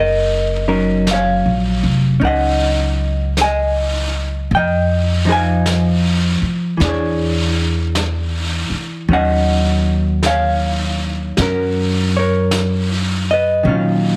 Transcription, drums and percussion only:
1.07 brush sweep soft
1.07 snare soft
1.07 hi-hat pedal soft
2.22 brush sweep soft
3.37 brush sweep soft
3.37 snare soft
3.37 hi-hat pedal medium
4.51 brush sweep soft
5.66 brush sweep soft
5.66 snare soft
5.66 hi-hat pedal soft
6.81 brush sweep soft
6.81 snare soft
7.95 brush sweep soft
7.95 snare soft
7.95 hi-hat pedal soft
9.10 brush sweep soft
10.23 brush sweep soft
10.23 snare soft
10.23 hi-hat pedal soft
11.37 brush sweep soft
11.37 snare soft
12.51 brush sweep soft
12.51 snare soft
12.51 hi-hat pedal medium
13.66 brush sweep soft

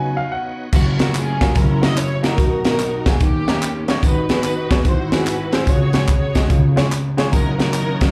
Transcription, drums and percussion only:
0.72 kick loud
0.72 crash medium
0.72 tambourine medium
0.99 snare loud
0.99 closed hi-hat medium
0.99 tambourine medium
1.14 clap medium
1.14 closed hi-hat medium
1.14 tambourine medium
1.41 kick medium
1.41 snare loud
1.41 closed hi-hat medium
1.41 tambourine medium
1.55 kick loud
1.55 closed hi-hat medium
1.55 tambourine medium
1.83 snare loud
1.83 closed hi-hat medium
1.83 tambourine medium
1.97 clap loud
1.97 closed hi-hat loud
1.97 tambourine loud
2.24 snare loud
2.24 closed hi-hat medium
2.24 tambourine medium
2.38 kick loud
2.38 closed hi-hat medium
2.38 tambourine medium
2.65 snare loud
2.65 closed hi-hat medium
2.65 tambourine medium
2.79 clap medium
2.79 closed hi-hat medium
2.79 tambourine loud
3.06 kick loud
3.06 snare loud
3.06 closed hi-hat medium
3.06 tambourine medium
3.20 kick loud
3.20 closed hi-hat medium
3.20 tambourine medium
3.48 snare loud
3.48 closed hi-hat medium
3.48 tambourine medium
3.62 clap loud
3.62 closed hi-hat loud
3.62 tambourine loud
3.88 snare loud
3.88 closed hi-hat medium
3.88 tambourine medium
4.03 kick loud
4.03 closed hi-hat medium
4.03 tambourine medium
4.29 snare loud
4.29 closed hi-hat medium
4.29 tambourine medium
4.44 clap loud
4.44 closed hi-hat medium
4.44 tambourine loud
4.71 kick medium
4.71 snare loud
4.71 closed hi-hat medium
4.71 tambourine medium
4.85 kick loud
4.85 closed hi-hat medium
4.85 tambourine medium
5.12 snare loud
5.12 closed hi-hat medium
5.12 tambourine medium
5.26 clap loud
5.26 closed hi-hat loud
5.26 tambourine loud
5.53 snare loud
5.53 closed hi-hat medium
5.53 tambourine medium
5.67 kick loud
5.67 closed hi-hat medium
5.67 tambourine medium
5.93 snare loud
5.93 closed hi-hat medium
5.93 tambourine medium
6.07 kick medium
6.07 clap loud
6.07 closed hi-hat medium
6.07 tambourine medium
6.35 kick medium
6.35 snare loud
6.35 closed hi-hat medium
6.35 tambourine medium
6.50 kick loud
6.50 closed hi-hat medium
6.50 tambourine medium
6.77 snare loud
6.77 closed hi-hat medium
6.77 tambourine medium
6.92 clap loud
6.92 closed hi-hat loud
6.92 tambourine loud
7.18 snare loud
7.18 closed hi-hat medium
7.18 tambourine medium
7.33 kick medium
7.33 closed hi-hat medium
7.33 tambourine medium
7.60 snare loud
7.60 closed hi-hat medium
7.60 tambourine medium
7.74 clap loud
7.74 closed hi-hat medium
7.74 tambourine medium
8.01 kick loud
8.01 snare loud
8.01 closed hi-hat medium
8.01 tambourine medium

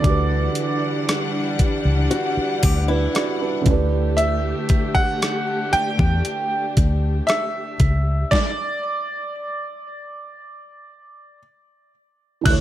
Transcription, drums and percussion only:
0.04 kick loud
0.04 closed hi-hat medium
0.55 closed hi-hat medium
1.09 cross-stick loud
1.09 closed hi-hat medium
1.59 kick medium
1.59 closed hi-hat medium
2.11 closed hi-hat medium
2.63 kick medium
2.63 closed hi-hat medium
3.15 cross-stick loud
3.15 closed hi-hat medium
3.66 kick loud
3.66 closed hi-hat medium
4.18 closed hi-hat medium
4.69 kick medium
4.69 closed hi-hat medium
4.95 kick medium
5.22 cross-stick loud
5.22 closed hi-hat medium
5.73 closed hi-hat medium
5.99 kick medium
6.25 closed hi-hat medium
6.77 kick medium
6.77 closed hi-hat medium
7.29 cross-stick loud
7.29 closed hi-hat medium
7.80 kick medium
7.80 closed hi-hat medium
8.32 kick loud
8.32 snare medium
12.46 kick loud
12.46 closed hi-hat medium
12.46 crash loud

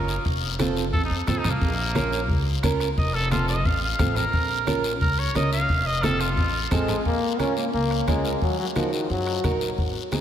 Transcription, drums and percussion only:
0.08 short guiro medium
0.25 bombo low medium
0.25 high conga soft
0.25 long guiro medium
0.59 bombo rim medium
0.59 high conga medium
0.59 short guiro medium
0.77 short guiro medium
0.93 bombo low medium
0.93 high conga soft
0.93 long guiro medium
1.27 bombo rim medium
1.27 high conga medium
1.27 low conga medium
1.27 short guiro medium
1.44 bombo rim medium
1.44 low conga medium
1.44 short guiro medium
1.61 bombo low medium
1.61 high conga soft
1.61 long guiro medium
1.95 bombo rim medium
1.95 high conga medium
1.95 short guiro medium
2.13 short guiro medium
2.29 bombo low medium
2.29 high conga soft
2.29 long guiro medium
2.63 bombo low medium
2.63 bombo rim medium
2.63 high conga medium
2.63 short guiro medium
2.80 bombo rim medium
2.80 short guiro medium
2.98 bombo low medium
2.98 high conga soft
2.98 long guiro medium
3.31 bombo rim medium
3.31 high conga medium
3.31 short guiro medium
3.48 short guiro medium
3.65 bombo low medium
3.65 high conga soft
3.65 long guiro medium
3.99 bombo low medium
3.99 bombo rim medium
3.99 high conga medium
3.99 low conga medium
3.99 short guiro medium
4.16 low conga medium
4.16 short guiro medium
4.33 bombo low medium
4.33 high conga soft
4.33 long guiro medium
4.67 bombo rim medium
4.67 high conga medium
4.67 short guiro medium
4.84 short guiro medium
5.01 bombo low medium
5.01 high conga soft
5.01 long guiro medium
5.35 bombo rim medium
5.35 high conga medium
5.35 short guiro medium
5.53 short guiro medium
5.69 bombo low medium
5.69 high conga soft
5.69 long guiro medium
6.03 bombo rim medium
6.03 high conga medium
6.03 short guiro medium
6.21 short guiro medium
6.37 bombo low medium
6.37 high conga soft
6.37 long guiro medium
6.71 bombo low medium
6.71 bombo rim medium
6.71 high conga medium
6.71 low conga medium
6.71 short guiro medium
6.88 bombo rim medium
6.88 low conga medium
6.88 short guiro medium
7.05 bombo low medium
7.05 high conga soft
7.05 long guiro medium
7.40 bombo rim medium
7.40 high conga medium
7.40 short guiro medium
7.57 short guiro medium
7.73 high conga soft
7.73 long guiro medium
7.91 bombo rim medium
8.08 bombo low medium
8.08 bombo rim medium
8.08 high conga medium
8.08 short guiro medium
8.25 short guiro medium
8.42 bombo low medium
8.42 high conga soft
8.42 long guiro medium
8.76 bombo rim medium
8.76 high conga medium
8.76 short guiro medium
8.93 short guiro medium
9.10 high conga soft
9.10 long guiro medium
9.27 bombo rim medium
9.44 bombo low medium
9.44 bombo rim medium
9.44 high conga medium
9.44 short guiro medium
9.61 short guiro medium
9.78 bombo low medium
9.78 high conga soft
9.78 long guiro medium
10.12 bombo rim medium
10.12 high conga medium
10.12 short guiro medium

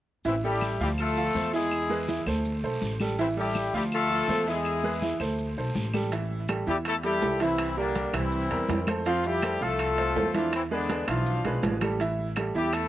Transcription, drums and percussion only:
0.25 high conga soft
0.25 long guiro medium
0.25 maracas medium
0.44 high conga soft
0.61 high conga medium
0.61 short guiro medium
0.61 claves medium
0.61 maracas medium
0.80 high conga soft
0.80 short guiro medium
0.80 maracas soft
0.98 high conga soft
0.98 long guiro medium
0.98 claves medium
0.98 maracas medium
1.17 high conga soft
1.17 maracas medium
1.35 high conga medium
1.35 short guiro medium
1.35 maracas medium
1.53 short guiro medium
1.53 maracas soft
1.71 high conga soft
1.71 long guiro medium
1.71 claves medium
1.71 maracas medium
1.90 high conga soft
2.08 high conga medium
2.08 short guiro medium
2.08 maracas medium
2.27 short guiro medium
2.27 claves medium
2.27 maracas soft
2.45 high conga soft
2.45 long guiro medium
2.45 maracas medium
2.64 high conga soft
2.82 high conga medium
2.82 short guiro medium
2.82 maracas medium
3.00 high conga medium
3.00 short guiro medium
3.00 claves medium
3.00 maracas soft
3.18 high conga soft
3.18 long guiro medium
3.18 maracas medium
3.37 high conga soft
3.55 high conga medium
3.55 short guiro medium
3.55 claves medium
3.55 maracas medium
3.73 high conga soft
3.73 short guiro medium
3.73 maracas soft
3.92 high conga soft
3.92 long guiro medium
3.92 claves medium
3.92 maracas medium
4.10 high conga soft
4.29 high conga medium
4.29 short guiro medium
4.29 maracas medium
4.47 short guiro medium
4.47 maracas soft
4.65 high conga soft
4.65 long guiro medium
4.65 claves medium
4.65 maracas medium
4.84 high conga soft
5.02 high conga medium
5.02 short guiro medium
5.02 maracas medium
5.20 short guiro medium
5.20 claves medium
5.20 maracas soft
5.38 high conga soft
5.38 long guiro medium
5.38 maracas medium
5.57 high conga soft
5.75 high conga medium
5.75 short guiro medium
5.75 maracas medium
5.94 high conga medium
5.94 short guiro medium
5.94 claves medium
5.94 maracas soft
6.12 high conga soft
6.12 high timbale medium
6.12 maracas medium
6.31 high conga soft
6.48 high conga medium
6.48 high timbale medium
6.48 low timbale medium
6.48 claves medium
6.48 maracas medium
6.67 high conga soft
6.67 maracas soft
6.85 high conga soft
6.85 high timbale medium
6.85 claves medium
6.85 maracas medium
7.03 high conga soft
7.03 high timbale medium
7.03 maracas medium
7.21 high conga medium
7.21 low timbale medium
7.21 maracas medium
7.40 high timbale medium
7.40 maracas soft
7.58 high conga soft
7.58 high timbale loud
7.58 claves medium
7.58 maracas medium
7.77 high conga soft
7.95 high conga medium
7.95 high timbale medium
7.95 low timbale medium
7.95 maracas medium
8.14 high timbale loud
8.14 claves medium
8.14 maracas soft
8.32 high conga soft
8.32 maracas medium
8.51 high conga soft
8.51 high timbale medium
8.69 high conga medium
8.69 high timbale medium
8.69 low timbale medium
8.69 maracas medium
8.87 high conga medium
8.87 high timbale medium
8.87 claves medium
8.87 maracas soft
9.05 high conga soft
9.05 high timbale medium
9.05 maracas medium
9.24 high conga soft
9.24 maracas medium
9.42 high conga medium
9.42 high timbale medium
9.42 low timbale medium
9.42 claves medium
9.42 maracas medium
9.61 high conga soft
9.61 maracas soft
9.79 high conga soft
9.79 high timbale medium
9.79 claves medium
9.79 maracas medium
9.98 high conga soft
9.98 high timbale medium
10.16 high conga medium
10.16 low timbale medium
10.16 maracas medium
10.34 high conga medium
10.34 high timbale medium
10.34 maracas soft
10.53 high conga soft
10.53 high timbale medium
10.53 claves medium
10.53 maracas medium
10.71 high conga soft
10.89 high conga medium
10.89 high timbale medium
10.89 low timbale medium
10.89 maracas medium
11.08 high timbale loud
11.08 claves medium
11.08 maracas soft
11.26 high conga soft
11.26 maracas medium
11.45 high conga soft
11.45 high timbale medium
11.63 high conga medium
11.63 high timbale medium
11.63 low timbale medium
11.63 maracas medium
11.81 high conga medium
11.81 high timbale medium
11.81 claves medium
11.81 maracas soft
12.00 high conga soft
12.00 high timbale medium
12.00 maracas medium
12.19 high conga soft
12.36 high conga medium
12.36 high timbale medium
12.36 low timbale medium
12.36 claves medium
12.36 maracas medium
12.55 high conga soft
12.55 maracas soft
12.73 high conga soft
12.73 high timbale medium
12.73 claves medium
12.73 maracas medium

